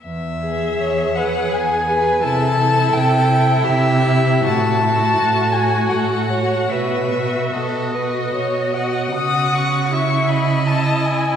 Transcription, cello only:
X:1
M:3/4
L:1/8
Q:1/4=79
K:E
V:1 name="Cello" clef=bass
E,,2 E,,2 E,,2 | =C,2 C,2 C,2 | A,,2 A,,2 A,,2 | B,,2 B,,2 B,,2 |
C,6 |]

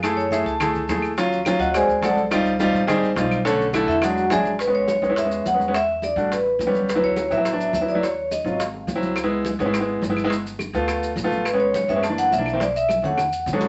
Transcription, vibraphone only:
X:1
M:4/4
L:1/8
Q:1/4=210
K:A
V:1 name="Vibraphone"
a c e a3 z2 | z3 [Fc^df] [G=c=dg]2 [Adfa] z | z8 | z3 [Ee] [Ff]2 [Gdeg] z |
B c c2 e2 f2 | e2 d2 B3 z | B c c e3 e d | c2 ^d2 =f3 z |
z8 | z8 | B c c e a f e2 | d e2 f3 z2 |]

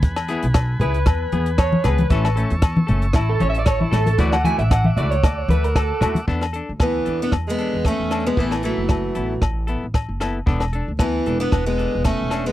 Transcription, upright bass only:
X:1
M:4/4
L:1/16
Q:"Swing 16ths" 1/4=115
K:Emix
V:1 name="Upright bass" clef=bass
E,,3 B,,,3 C,,2 E,,2 E,,4 C,,2 | A,,,3 E,,3 F,,,2 A,,,2 A,,,4 A,,,2 | D,,3 A,,,3 C,,2 D,,2 D,,4 ^D,,2 | E,,3 D,,3 E,,2 E,,3 E,,2 E,,3 |
A,,,3 F,,,3 A,,,2 A,,,3 A,,,2 F,,,3 | E,,,3 D,,3 E,,,2 E,,,3 E,,,2 E,,,3 |]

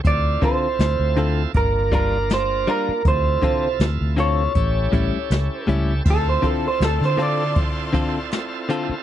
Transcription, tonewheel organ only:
X:1
M:4/4
L:1/8
Q:"Swing 16ths" 1/4=80
K:Dm
V:1 name="Tonewheel organ"
[CEFA]4 [B,DFB]4 | [C,EFA]4 [^CEGA]4 | [CEFA]8 |]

